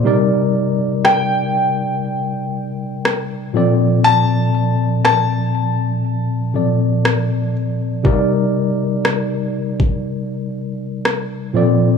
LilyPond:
<<
  \new Staff \with { instrumentName = "Grand piano" } { \time 4/4 \key c \dorian \tempo 4 = 60 r4 g''2. | a''4 a''2~ a''8 r8 | r1 | }
  \new Staff \with { instrumentName = "Tine electric piano" } { \time 4/4 \key c \dorian <c g ees' bes' d''>2.~ <c g ees' bes' d''>8 <bes, f c' a' d''>8~ | <bes, f c' a' d''>2~ <bes, f c' a' d''>8 <bes, f c' a' d''>4. | <c g ees' bes' d''>2.~ <c g ees' bes' d''>8 <bes, f c' a' d''>8 | }
  \new DrumStaff \with { instrumentName = "Drums" } \drummode { \time 4/4 r4 ss4 r4 ss4 | r4 ss4 r4 ss4 | bd4 ss8. bd16 r4 ss4 | }
>>